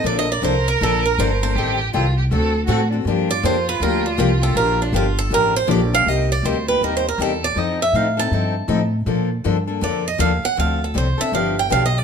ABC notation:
X:1
M:4/4
L:1/16
Q:"Swing" 1/4=160
K:Gm
V:1 name="Steel-string acoustic guitar"
(3d2 e2 d2 c2 B2 A2 B2 c2 c2- | c2 z12 z2 | z2 d2 c2 =B2 _B2 D2 F2 A2 | B2 D2 F2 A2 B2 c2 d2 f2 |
e2 d2 c2 =B2 (3_B2 c2 B2 A2 d2 | e2 =e2 f2 a8- a z | z8 d2 e2 f2 ^f2 | f2 A2 c2 =e2 f2 g2 (3f2 _e2 d2 |]
V:2 name="Violin"
B16 | G4 F2 G2 A4 ^F2 D2 | F16- | F12- F2 z2 |
z16 | z16 | z16 | z16 |]
V:3 name="Steel-string acoustic guitar"
[D,F,B,DA]2 z2 [D,F,B,DA] z3 [D,F,B,DA]2 z2 [D,F,B,DA] z [B,DA]2 | [E,G,CGA]2 z2 [E,G,CGA] z3 [D,A,C^FA]2 z2 [D,A,CFA] z [CFA]2 | [D,F,B,DG]2 z2 [D,F,B,DG] z3 [D,F,B,DG]2 z2 [D,F,B,DG] z [B,DG]2 | [D,F,B,DG]2 z2 [D,F,B,DG] z3 [D,F,B,DG]2 z2 [D,F,B,DG] z [B,DG]2 |
[C,G,B,EG]2 z2 [C,G,B,EG] z [B,EG]2 [C,G,B,EG]2 z2 [C,G,B,EG] z3 | [F,CEA]2 z2 [F,CEA] z [CEA]2 [F,CEA]2 z2 [F,CEA] z3 | [D,F,B,DA]2 z2 [D,F,B,DA] z [B,DA]2 [D,F,B,DA]2 z2 [D,F,B,DA] z3 | [D,F,CDA]2 z2 [D,F,CDA] z [CDA]2 [D,F,=B,DG]2 z2 [D,F,B,DG] z3 |]
V:4 name="Upright bass" clef=bass
B,,,4 C,,4 B,,,4 G,,,4 | A,,,4 C,,4 D,,4 A,,4 | G,,4 F,,4 D,,4 C,,4 | B,,,4 G,,,4 A,,,4 B,,,4 |
C,,4 D,,4 E,,4 =E,,4 | F,,4 A,,4 G,,4 A,,4 | B,,4 G,,4 F,,4 E,,2 z2 | D,,4 C,,2 z2 G,,,4 =B,,,4 |]